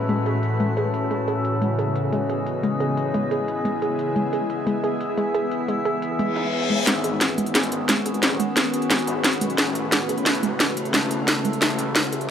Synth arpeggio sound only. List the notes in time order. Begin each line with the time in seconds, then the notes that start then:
0.09 G#3
0.26 G#4
0.60 G#3
0.77 G#4
1.11 G#3
1.28 G#4
1.62 G#3
1.79 G#4
2.13 G#3
2.30 G#4
2.63 G#3
2.80 G#4
3.14 G#3
3.31 G#4
3.65 G#3
3.82 G#4
4.16 G#3
4.33 G#4
4.67 G#3
4.84 G#4
5.18 G#3
5.35 G#4
5.68 G#3
5.85 G#4
6.19 G#3
6.36 D#4
6.70 G#3
6.87 G#3
7.04 G#4
7.38 G#3
7.55 G#4
7.89 G#3
8.06 G#4
8.40 G#3
8.57 G#4
8.90 G#3
9.07 G#4
9.41 G#3
9.58 G#4
9.92 G#3
10.09 G#4
10.43 G#3
10.60 G#4
10.94 G#3
11.11 G#4
11.45 G#3
11.62 G#4
11.96 G#3
12.12 G#4